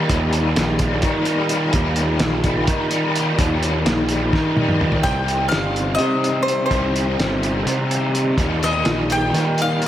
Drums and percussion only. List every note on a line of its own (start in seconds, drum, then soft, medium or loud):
0.09 kick loud
0.09 closed hi-hat medium
0.33 closed hi-hat medium
0.56 snare loud
0.56 closed hi-hat medium
0.79 kick medium
0.79 closed hi-hat medium
1.02 kick loud
1.02 closed hi-hat medium
1.25 closed hi-hat medium
1.49 closed hi-hat medium
1.73 kick loud
1.73 closed hi-hat medium
1.96 closed hi-hat medium
2.20 snare loud
2.20 closed hi-hat medium
2.44 kick medium
2.44 closed hi-hat medium
2.67 kick loud
2.67 closed hi-hat medium
2.91 closed hi-hat medium
3.16 closed hi-hat medium
3.39 kick loud
3.39 closed hi-hat medium
3.63 closed hi-hat medium
3.86 snare loud
3.86 closed hi-hat medium
4.09 closed hi-hat medium
4.33 kick loud
4.33 snare medium
4.57 high tom medium
4.68 mid tom medium
4.81 mid tom medium
4.92 floor tom medium
5.04 kick loud
5.04 closed hi-hat medium
5.28 closed hi-hat medium
5.52 snare loud
5.52 closed hi-hat medium
5.76 closed hi-hat medium
5.99 closed hi-hat medium
6.24 closed hi-hat medium
6.48 closed hi-hat medium
6.71 kick loud
6.71 closed hi-hat medium
6.96 closed hi-hat medium
7.20 snare loud
7.20 closed hi-hat medium
7.43 closed hi-hat medium
7.67 closed hi-hat medium
7.91 closed hi-hat medium
8.15 closed hi-hat medium
8.38 kick loud
8.38 closed hi-hat medium
8.63 snare soft
8.63 closed hi-hat medium
8.85 snare loud
8.85 closed hi-hat medium
9.10 closed hi-hat medium
9.35 snare soft
9.35 closed hi-hat medium
9.58 closed hi-hat medium
9.82 closed hi-hat soft